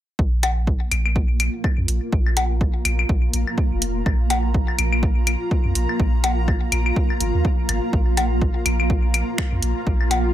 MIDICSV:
0, 0, Header, 1, 5, 480
1, 0, Start_track
1, 0, Tempo, 483871
1, 188, Time_signature, 4, 2, 24, 8
1, 10253, End_track
2, 0, Start_track
2, 0, Title_t, "Ambient pad"
2, 0, Program_c, 0, 92
2, 187, Note_on_c, 0, 58, 86
2, 511, Note_on_c, 0, 65, 73
2, 1202, Note_on_c, 0, 77, 81
2, 1800, Note_on_c, 0, 82, 86
2, 9480, Note_on_c, 0, 84, 90
2, 9500, Note_off_c, 0, 82, 0
2, 10253, Note_off_c, 0, 58, 0
2, 10253, Note_off_c, 0, 65, 0
2, 10253, Note_off_c, 0, 77, 0
2, 10253, Note_off_c, 0, 84, 0
2, 10253, End_track
3, 0, Start_track
3, 0, Title_t, "Sub bass"
3, 0, Program_c, 1, 38
3, 188, Note_on_c, 1, 34, 94
3, 753, Note_off_c, 1, 34, 0
3, 908, Note_on_c, 1, 34, 90
3, 1473, Note_off_c, 1, 34, 0
3, 1767, Note_on_c, 1, 41, 98
3, 1844, Note_off_c, 1, 41, 0
3, 1868, Note_on_c, 1, 34, 99
3, 1973, Note_off_c, 1, 34, 0
3, 2108, Note_on_c, 1, 34, 95
3, 2673, Note_off_c, 1, 34, 0
3, 2828, Note_on_c, 1, 34, 90
3, 3019, Note_off_c, 1, 34, 0
3, 3068, Note_on_c, 1, 34, 103
3, 3259, Note_off_c, 1, 34, 0
3, 3308, Note_on_c, 1, 34, 94
3, 3413, Note_off_c, 1, 34, 0
3, 3687, Note_on_c, 1, 29, 78
3, 3989, Note_off_c, 1, 29, 0
3, 4028, Note_on_c, 1, 34, 92
3, 4593, Note_off_c, 1, 34, 0
3, 4748, Note_on_c, 1, 34, 91
3, 5313, Note_off_c, 1, 34, 0
3, 5607, Note_on_c, 1, 41, 101
3, 5684, Note_off_c, 1, 41, 0
3, 5708, Note_on_c, 1, 34, 100
3, 5813, Note_off_c, 1, 34, 0
3, 5948, Note_on_c, 1, 34, 99
3, 6513, Note_off_c, 1, 34, 0
3, 6668, Note_on_c, 1, 34, 91
3, 6859, Note_off_c, 1, 34, 0
3, 7148, Note_on_c, 1, 32, 87
3, 7253, Note_off_c, 1, 32, 0
3, 7287, Note_on_c, 1, 39, 98
3, 7364, Note_off_c, 1, 39, 0
3, 7627, Note_on_c, 1, 32, 99
3, 7733, Note_off_c, 1, 32, 0
3, 7868, Note_on_c, 1, 34, 94
3, 8433, Note_off_c, 1, 34, 0
3, 8588, Note_on_c, 1, 34, 94
3, 9153, Note_off_c, 1, 34, 0
3, 9447, Note_on_c, 1, 41, 98
3, 9524, Note_off_c, 1, 41, 0
3, 9548, Note_on_c, 1, 34, 99
3, 9654, Note_off_c, 1, 34, 0
3, 9787, Note_on_c, 1, 34, 95
3, 10253, Note_off_c, 1, 34, 0
3, 10253, End_track
4, 0, Start_track
4, 0, Title_t, "Percussion blips"
4, 428, Note_on_c, 9, 56, 93
4, 527, Note_off_c, 9, 56, 0
4, 2348, Note_on_c, 9, 56, 94
4, 2447, Note_off_c, 9, 56, 0
4, 4268, Note_on_c, 9, 56, 90
4, 4367, Note_off_c, 9, 56, 0
4, 6187, Note_on_c, 9, 56, 89
4, 6286, Note_off_c, 9, 56, 0
4, 8108, Note_on_c, 9, 56, 89
4, 8207, Note_off_c, 9, 56, 0
4, 10027, Note_on_c, 9, 56, 87
4, 10126, Note_off_c, 9, 56, 0
4, 10253, End_track
5, 0, Start_track
5, 0, Title_t, "Drums"
5, 188, Note_on_c, 9, 36, 115
5, 287, Note_off_c, 9, 36, 0
5, 428, Note_on_c, 9, 42, 89
5, 428, Note_on_c, 9, 75, 69
5, 527, Note_off_c, 9, 42, 0
5, 527, Note_off_c, 9, 75, 0
5, 668, Note_on_c, 9, 36, 113
5, 767, Note_off_c, 9, 36, 0
5, 908, Note_on_c, 9, 42, 88
5, 908, Note_on_c, 9, 75, 75
5, 1007, Note_off_c, 9, 42, 0
5, 1007, Note_off_c, 9, 75, 0
5, 1047, Note_on_c, 9, 75, 74
5, 1146, Note_off_c, 9, 75, 0
5, 1148, Note_on_c, 9, 36, 110
5, 1247, Note_off_c, 9, 36, 0
5, 1388, Note_on_c, 9, 42, 85
5, 1388, Note_on_c, 9, 75, 78
5, 1487, Note_off_c, 9, 42, 0
5, 1487, Note_off_c, 9, 75, 0
5, 1628, Note_on_c, 9, 36, 120
5, 1628, Note_on_c, 9, 75, 61
5, 1727, Note_off_c, 9, 36, 0
5, 1727, Note_off_c, 9, 75, 0
5, 1868, Note_on_c, 9, 42, 89
5, 1967, Note_off_c, 9, 42, 0
5, 2108, Note_on_c, 9, 36, 120
5, 2207, Note_off_c, 9, 36, 0
5, 2247, Note_on_c, 9, 75, 62
5, 2346, Note_off_c, 9, 75, 0
5, 2348, Note_on_c, 9, 42, 90
5, 2447, Note_off_c, 9, 42, 0
5, 2588, Note_on_c, 9, 36, 120
5, 2687, Note_off_c, 9, 36, 0
5, 2828, Note_on_c, 9, 42, 95
5, 2828, Note_on_c, 9, 75, 78
5, 2927, Note_off_c, 9, 75, 0
5, 2928, Note_off_c, 9, 42, 0
5, 2967, Note_on_c, 9, 75, 79
5, 3066, Note_off_c, 9, 75, 0
5, 3068, Note_on_c, 9, 36, 118
5, 3167, Note_off_c, 9, 36, 0
5, 3308, Note_on_c, 9, 42, 93
5, 3407, Note_off_c, 9, 42, 0
5, 3447, Note_on_c, 9, 75, 60
5, 3546, Note_off_c, 9, 75, 0
5, 3548, Note_on_c, 9, 36, 118
5, 3647, Note_off_c, 9, 36, 0
5, 3788, Note_on_c, 9, 42, 96
5, 3887, Note_off_c, 9, 42, 0
5, 4028, Note_on_c, 9, 36, 122
5, 4028, Note_on_c, 9, 75, 62
5, 4127, Note_off_c, 9, 36, 0
5, 4127, Note_off_c, 9, 75, 0
5, 4268, Note_on_c, 9, 42, 95
5, 4367, Note_off_c, 9, 42, 0
5, 4508, Note_on_c, 9, 36, 116
5, 4607, Note_off_c, 9, 36, 0
5, 4646, Note_on_c, 9, 75, 61
5, 4745, Note_off_c, 9, 75, 0
5, 4747, Note_on_c, 9, 42, 92
5, 4748, Note_on_c, 9, 75, 81
5, 4846, Note_off_c, 9, 42, 0
5, 4847, Note_off_c, 9, 75, 0
5, 4886, Note_on_c, 9, 75, 80
5, 4985, Note_off_c, 9, 75, 0
5, 4988, Note_on_c, 9, 36, 119
5, 5087, Note_off_c, 9, 36, 0
5, 5227, Note_on_c, 9, 42, 90
5, 5227, Note_on_c, 9, 75, 83
5, 5326, Note_off_c, 9, 42, 0
5, 5327, Note_off_c, 9, 75, 0
5, 5468, Note_on_c, 9, 36, 120
5, 5567, Note_off_c, 9, 36, 0
5, 5708, Note_on_c, 9, 42, 97
5, 5807, Note_off_c, 9, 42, 0
5, 5846, Note_on_c, 9, 75, 62
5, 5945, Note_off_c, 9, 75, 0
5, 5948, Note_on_c, 9, 36, 118
5, 6047, Note_off_c, 9, 36, 0
5, 6188, Note_on_c, 9, 42, 90
5, 6287, Note_off_c, 9, 42, 0
5, 6427, Note_on_c, 9, 75, 63
5, 6428, Note_on_c, 9, 36, 114
5, 6526, Note_off_c, 9, 75, 0
5, 6527, Note_off_c, 9, 36, 0
5, 6667, Note_on_c, 9, 42, 94
5, 6667, Note_on_c, 9, 75, 80
5, 6766, Note_off_c, 9, 75, 0
5, 6767, Note_off_c, 9, 42, 0
5, 6806, Note_on_c, 9, 75, 76
5, 6905, Note_off_c, 9, 75, 0
5, 6908, Note_on_c, 9, 36, 120
5, 7007, Note_off_c, 9, 36, 0
5, 7046, Note_on_c, 9, 75, 57
5, 7145, Note_off_c, 9, 75, 0
5, 7148, Note_on_c, 9, 42, 91
5, 7247, Note_off_c, 9, 42, 0
5, 7388, Note_on_c, 9, 36, 122
5, 7487, Note_off_c, 9, 36, 0
5, 7627, Note_on_c, 9, 42, 94
5, 7627, Note_on_c, 9, 75, 59
5, 7727, Note_off_c, 9, 42, 0
5, 7727, Note_off_c, 9, 75, 0
5, 7868, Note_on_c, 9, 36, 116
5, 7967, Note_off_c, 9, 36, 0
5, 8108, Note_on_c, 9, 42, 87
5, 8108, Note_on_c, 9, 75, 61
5, 8207, Note_off_c, 9, 42, 0
5, 8207, Note_off_c, 9, 75, 0
5, 8348, Note_on_c, 9, 36, 108
5, 8447, Note_off_c, 9, 36, 0
5, 8587, Note_on_c, 9, 75, 76
5, 8588, Note_on_c, 9, 42, 89
5, 8686, Note_off_c, 9, 75, 0
5, 8687, Note_off_c, 9, 42, 0
5, 8726, Note_on_c, 9, 75, 75
5, 8826, Note_off_c, 9, 75, 0
5, 8828, Note_on_c, 9, 36, 115
5, 8927, Note_off_c, 9, 36, 0
5, 9067, Note_on_c, 9, 75, 78
5, 9068, Note_on_c, 9, 42, 90
5, 9166, Note_off_c, 9, 75, 0
5, 9167, Note_off_c, 9, 42, 0
5, 9307, Note_on_c, 9, 75, 59
5, 9308, Note_on_c, 9, 26, 98
5, 9308, Note_on_c, 9, 36, 125
5, 9406, Note_off_c, 9, 75, 0
5, 9407, Note_off_c, 9, 26, 0
5, 9407, Note_off_c, 9, 36, 0
5, 9548, Note_on_c, 9, 42, 92
5, 9647, Note_off_c, 9, 42, 0
5, 9787, Note_on_c, 9, 36, 109
5, 9887, Note_off_c, 9, 36, 0
5, 9926, Note_on_c, 9, 75, 62
5, 10025, Note_off_c, 9, 75, 0
5, 10028, Note_on_c, 9, 42, 87
5, 10127, Note_off_c, 9, 42, 0
5, 10253, End_track
0, 0, End_of_file